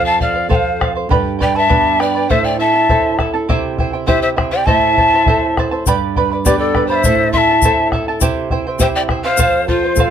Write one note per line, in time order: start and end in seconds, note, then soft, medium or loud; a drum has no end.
0.00 1.06 F2 medium
0.00 0.18 A4 medium
0.00 0.19 C5 medium
0.00 0.19 F5 medium
0.05 0.19 F5 medium
0.05 0.20 A5 medium
0.19 0.35 A4 medium
0.19 0.34 C5 medium
0.19 0.49 D5 medium
0.19 0.33 F5 medium
0.19 0.49 F5 medium
0.19 bombo low medium
0.34 0.49 C5 soft
0.34 0.49 F5 soft
0.49 1.08 C4 soft
0.49 1.08 F4 soft
0.49 0.79 A4 medium
0.49 1.08 A4 medium
0.49 0.80 C5 medium
0.49 0.93 C5 medium
0.49 0.80 F5 medium
0.49 0.56 G5 medium
0.49 bombo low medium
0.55 0.92 F5 medium
0.80 0.95 A4 soft
0.80 0.95 C5 medium
0.80 0.94 F5 medium
0.80 bombo rim medium
0.80 bombo low medium
0.95 1.10 C5 soft
0.95 1.10 F5 soft
1.09 2.26 G2 medium
1.09 1.40 G4 medium
1.09 1.39 B4 medium
1.09 1.39 D5 medium
1.09 1.38 G5 medium
1.09 1.39 B5 medium
1.09 bombo low medium
1.39 1.55 B4 medium
1.39 1.54 D5 medium
1.39 1.59 D5 medium
1.39 1.55 G5 medium
1.39 1.58 G5 loud
1.39 1.54 B5 medium
1.39 bombo low medium
1.55 1.68 B4 soft
1.55 1.68 D5 soft
1.55 2.03 E5 medium
1.55 2.01 A5 loud
1.55 1.69 B5 soft
1.69 2.28 B3 soft
1.69 2.28 D4 soft
1.69 1.99 G4 medium
1.69 2.28 G4 medium
1.69 1.98 B4 medium
1.69 1.99 D5 medium
1.69 1.98 G5 medium
1.69 1.99 B5 medium
1.69 bombo low medium
1.99 2.15 B4 medium
1.99 2.15 D5 medium
1.99 2.31 D5 medium
1.99 2.14 G5 medium
1.99 2.32 G5 medium
1.99 2.14 B5 medium
1.99 bombo rim soft
2.15 2.30 B4 soft
2.15 2.30 D5 soft
2.15 2.30 B5 soft
2.29 3.45 A2 medium
2.29 2.59 E4 medium
2.29 2.59 A4 medium
2.29 2.45 C5 medium
2.29 2.60 C5 medium
2.29 2.58 E5 medium
2.29 2.46 E5 medium
2.29 2.60 A5 medium
2.29 bombo low medium
2.44 2.59 D5 medium
2.44 2.60 G5 medium
2.59 2.75 E4 medium
2.59 2.74 A4 medium
2.59 2.74 E5 medium
2.59 3.15 E5 medium
2.59 3.15 A5 medium
2.59 2.74 A5 medium
2.75 2.89 E4 soft
2.75 2.89 A4 soft
2.75 2.90 A5 soft
2.89 3.47 C4 soft
2.89 3.18 E4 medium
2.89 3.48 E4 soft
2.89 3.19 A4 medium
2.89 3.48 A4 medium
2.89 3.19 C5 medium
2.89 3.18 E5 medium
2.89 3.19 A5 medium
2.89 bombo low medium
3.19 3.34 E4 medium
3.19 3.33 A4 medium
3.19 3.33 E5 medium
3.19 3.32 A5 medium
3.19 bombo rim soft
3.19 bombo low soft
3.34 3.49 E4 medium
3.34 3.49 A4 medium
3.34 3.49 A5 medium
3.49 4.64 C3 medium
3.49 3.78 E4 medium
3.49 3.79 G4 medium
3.49 3.79 C5 loud
3.49 3.77 E5 medium
3.49 3.79 G5 loud
3.49 bombo low medium
3.78 3.94 E4 medium
3.78 3.92 C5 medium
3.78 3.93 E5 medium
3.78 3.92 G5 medium
3.78 bombo low medium
3.93 4.07 E4 soft
3.93 4.07 C5 soft
3.93 4.07 G5 medium
4.07 4.66 C4 soft
4.07 4.36 E4 medium
4.07 4.66 E4 soft
4.07 4.37 G4 medium
4.07 4.66 G4 medium
4.07 4.22 C5 medium
4.07 4.36 C5 medium
4.07 4.21 E5 medium
4.07 4.35 E5 medium
4.07 4.37 G5 medium
4.07 bombo low medium
4.22 4.29 C5 medium
4.22 4.29 E5 medium
4.36 4.52 E4 medium
4.36 4.51 C5 medium
4.36 4.52 E5 medium
4.36 4.50 G5 medium
4.36 bombo rim medium
4.36 bombo low medium
4.51 4.66 E4 soft
4.51 4.67 C5 soft
4.51 4.67 D5 medium
4.51 4.66 G5 medium
4.51 4.68 G5 medium
4.66 5.83 A2 medium
4.66 4.97 E4 medium
4.66 4.97 A4 medium
4.66 4.97 C5 medium
4.66 5.56 E5 medium
4.66 4.96 E5 medium
4.66 5.56 A5 loud
4.66 4.97 A5 medium
4.66 bombo low medium
4.97 5.12 E4 medium
4.97 5.12 C5 medium
4.97 5.12 E5 medium
4.97 5.12 A5 medium
4.97 bombo low medium
5.14 5.26 E4 soft
5.14 5.27 C5 soft
5.14 5.27 A5 soft
5.26 5.85 C4 soft
5.26 5.57 E4 medium
5.26 5.85 E4 soft
5.26 5.57 A4 medium
5.26 5.85 A4 medium
5.26 5.57 C5 medium
5.26 5.57 E5 medium
5.26 5.57 A5 medium
5.26 bombo low medium
5.57 5.72 E4 medium
5.57 5.71 C5 medium
5.57 5.72 E5 medium
5.57 5.70 A5 medium
5.57 bombo rim medium
5.57 bombo low medium
5.71 5.87 E4 soft
5.71 5.87 C5 soft
5.71 5.86 A5 medium
5.86 7.01 G2 medium
5.86 6.16 G4 medium
5.86 6.16 B4 medium
5.86 6.16 D5 medium
5.86 6.15 G5 medium
5.86 6.16 B5 loud
5.86 bombo low medium
5.86 shaker medium
6.16 6.31 B4 medium
6.16 6.31 D5 medium
6.16 6.31 G5 medium
6.16 6.30 B5 medium
6.16 bombo low medium
6.32 6.45 B4 soft
6.32 6.45 D5 soft
6.32 6.45 B5 soft
6.45 7.03 B3 soft
6.45 7.03 D4 soft
6.45 6.75 G4 medium
6.45 6.58 G4 medium
6.45 7.03 G4 medium
6.45 6.74 B4 medium
6.45 6.58 D5 medium
6.45 6.75 D5 medium
6.45 6.73 G5 medium
6.45 6.75 B5 medium
6.45 bombo low medium
6.45 shaker medium
6.59 6.86 A4 medium
6.59 6.87 D5 medium
6.75 6.90 B4 medium
6.75 6.90 D5 medium
6.75 6.89 G5 medium
6.75 6.89 B5 medium
6.75 bombo rim soft
6.75 bombo low medium
6.87 7.29 C5 medium
6.87 6.96 F5 medium
6.87 7.04 B5 medium
6.91 7.05 B4 soft
6.91 7.05 D5 medium
6.95 7.31 E5 medium
7.04 8.19 A2 medium
7.04 7.34 E4 medium
7.04 7.34 A4 medium
7.04 7.34 C5 medium
7.04 7.33 E5 medium
7.04 7.34 A5 medium
7.04 bombo low medium
7.04 shaker medium
7.32 7.49 E4 medium
7.32 7.50 A4 medium
7.32 7.88 E5 medium
7.32 7.49 E5 medium
7.32 7.39 C6 medium
7.32 bombo low medium
7.37 7.49 A5 medium
7.37 7.88 A5 medium
7.50 7.64 E4 soft
7.50 7.64 A4 soft
7.50 7.64 A5 medium
7.62 8.20 C4 medium
7.62 8.21 E4 soft
7.62 7.92 E4 medium
7.62 8.21 A4 medium
7.62 7.92 A4 medium
7.62 7.93 C5 medium
7.62 7.91 E5 medium
7.62 7.93 A5 medium
7.62 bombo low medium
7.62 shaker medium
7.92 8.07 E4 medium
7.92 8.08 A4 medium
7.92 8.07 E5 medium
7.92 8.07 A5 medium
7.92 bombo rim soft
7.92 bombo low medium
8.08 8.21 E4 medium
8.08 8.22 A4 medium
8.08 8.22 A5 medium
8.21 9.35 C3 medium
8.21 8.50 E4 medium
8.21 8.51 G4 medium
8.21 8.51 C5 medium
8.21 8.50 E5 medium
8.21 8.51 G5 medium
8.21 bombo low medium
8.21 shaker medium
8.50 8.66 E4 medium
8.50 8.66 C5 medium
8.50 8.66 E5 medium
8.50 8.66 G5 medium
8.50 bombo low medium
8.67 8.80 E4 soft
8.67 8.80 C5 soft
8.67 8.80 G5 medium
8.79 9.36 C4 medium
8.79 9.36 E4 soft
8.79 9.08 E4 medium
8.79 9.36 G4 medium
8.79 9.09 G4 medium
8.79 8.86 C5 medium
8.79 9.09 C5 medium
8.79 9.09 E5 medium
8.79 9.09 G5 medium
8.79 8.88 G5 medium
8.79 bombo low medium
8.79 shaker medium
8.95 9.02 D5 medium
8.95 9.02 G5 medium
9.09 9.24 E4 medium
9.09 9.24 C5 medium
9.09 9.24 E5 medium
9.09 9.23 G5 medium
9.09 bombo rim medium
9.09 bombo low medium
9.24 9.40 E4 soft
9.24 9.38 C5 medium
9.24 9.66 C5 medium
9.24 9.65 F5 medium
9.24 9.38 G5 medium
9.37 10.10 F2 medium
9.37 9.67 A4 medium
9.37 9.68 C5 medium
9.37 9.68 F5 medium
9.37 bombo low medium
9.37 shaker medium
9.68 10.10 F4 medium
9.68 9.83 A4 medium
9.68 10.10 C5 medium
9.68 9.83 C5 medium
9.68 9.83 F5 medium
9.68 bombo low medium
9.84 9.98 C5 soft
9.84 9.98 F5 medium
9.96 10.10 C4 soft
9.96 10.10 F4 soft
9.96 10.10 A4 medium
9.96 10.10 C5 medium
9.96 bombo low medium
9.96 shaker medium
10.00 10.10 F5 medium